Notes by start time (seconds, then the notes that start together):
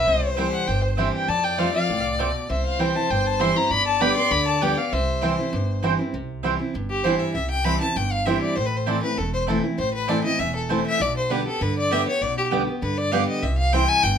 Already playing: E5
0.07 C2 C3 C5
0.37 E3 G3 C4 E4 C5 G5
0.53 F#5
0.67 G1 G2 G5
0.83 C5
0.97 E3 G3 C4 E4 C5 E5 G5
1.14 G5
1.28 F2 D5 A5
1.44 G5
1.57 F3 G3 A3 C4 F4 C5 F5 G5
1.74 C4 F4 F5
1.89 C2 A2
2.19 B2 A3 F4 C5 G5
2.49 C2 C3 C5 E5
2.65 F5
2.79 E3 G3 C4 E4 C5 G5
2.95 C4 E4 A5
3.10 G1 G2 G5
3.26 A5
3.39 E3 G3 C4 E4 C5 G5 C6
3.56 C4 E4 A#5
3.70 G1 G2 D5 B5
3.87 A5
4.00 D3 G3 B3 G4 D5 G5 B5
4.16 B3 G4 C6
4.31 D2 D3 B5
4.47 A5
4.61 D3 G3 B3 G4 D5 G5
4.77 B3 G4 F5
4.92 C2 C3 C5 E5
5.21 E3 G3 C4 E4 C5 G5
5.38 C4 E4
5.53 G1 G2
5.83 E3 G3 C4 E4 C5 G5
5.99 C4 E4
6.13 C2 C3
6.43 E3 G3 C4 E4 C5 G5
6.59 C4 E4
6.74 G1 G2
6.90 G4
7.04 E3 G3 C4 E4 C5 G5
7.20 E5
7.34 C2 C3 E5
7.51 G5
7.65 E3 G3 C4 E4 C5 G5 B5
7.81 C4 E4 A5
7.96 G1 G2 G5
8.12 F5
8.26 E3 G3 C4 E4 C5 E5 G5
8.42 D5
8.56 A1 A2 C5
8.66 B4
8.77 C5
8.86 E3 A3 C4 E4 C5 D5 A5
9.02 C4 E4 B4
9.18 E1 E2 A4
9.33 C5
9.47 E3 A3 C4 E4 C5 A5
9.64 C4 E4
9.78 A1 A2 C5
9.94 B4
10.08 E3 A3 C4 E4 C5 D5 A5
10.24 C4 E4 D#5
10.39 E1 E2 E5
10.56 A4
10.69 E3 A3 C4 E4 C5 A5
10.86 E5
11.00 B1 B2 D5
11.17 C5
11.30 D3 G3 B3 G4 B4 D5 G5
11.46 B3 G4 A4
11.61 G2 D3 B4
11.78 D5
11.90 D3 G3 B3 G4 D5 E5 G5
12.07 B3 G4 C#5
12.22 B1 B2 D5
12.38 G4
12.51 D3 G3 B3 G4 D5 G5
12.68 B3 G4
12.82 G2 D3 B4
12.98 D5
13.12 D3 G3 B3 G4 D5 F5 G5
13.28 D#5
13.42 C2 C3 E5
13.58 F5
13.73 E3 G3 C4 E4 C5 G5
13.89 G#5
14.03 G1 G2 G5